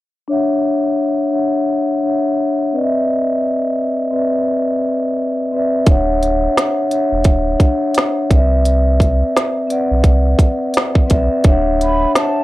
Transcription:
0.28 D4 C#5 E5
0.32 F#5
1.31 D4 C#5 E5
1.35 F#5
2.02 D4 C#5 E5
2.07 F#5
2.73 C4 B4 D5 D#5
2.83 E5
4.11 C4 B4 D5
4.15 E5
5.52 C4 B4 D5
5.57 E5
5.86 D1 D4 C#5 E5, kick, closed hi-hat
5.91 F#5
6.23 closed hi-hat
6.57 snare, closed hi-hat
6.89 D4 C#5 E5, closed hi-hat
6.93 F#5
7.12 E1
7.24 D1, kick, closed hi-hat
7.58 D4 C#5 E5, kick, closed hi-hat
7.62 F#5
7.94 snare, closed hi-hat
8.30 C2 C4 B4 D5, kick, closed hi-hat
8.35 E5
8.65 closed hi-hat
9.00 kick, closed hi-hat
9.37 snare, closed hi-hat
9.67 C4 B4 D5, closed hi-hat
9.72 F#5
9.91 B1
10.04 C2, kick, closed hi-hat
10.39 kick, closed hi-hat
10.74 snare, closed hi-hat
10.95 kick
11.06 C4 B4 D5, closed hi-hat
11.11 B1 E5, kick
11.44 D1 D4 C#5 E5, kick, closed hi-hat
11.49 F#5
11.81 B5, closed hi-hat
12.15 A5, snare, closed hi-hat

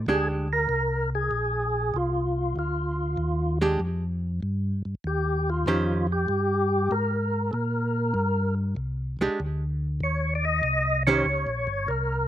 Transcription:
0.06 D2 G#3 D4 G4 G#4
0.53 A#4
0.69 C2
1.15 G#4
1.31 A#1
1.94 C2 F4
2.56 D2 F4
3.17 D#2
3.62 G#3 D4 G4
3.80 F2
4.43 G2
4.85 G2
5.04 D#2 G4
5.50 F4
5.66 F2 D#3 C#4 G4 C5
6.12 G4
6.28 G2
6.91 G#2 A#4
7.51 A#2 A4 A#4
8.14 G2
8.77 C2
9.19 C2 G#3 D4 G4
9.40 D2
10.00 D#2 C#5
10.35 D5
10.45 D#5
10.63 C2
11.07 D#3 C#4 G4 C5 C#5
11.25 C#2
11.47 A#1
11.67 G1
11.88 C2 A#4

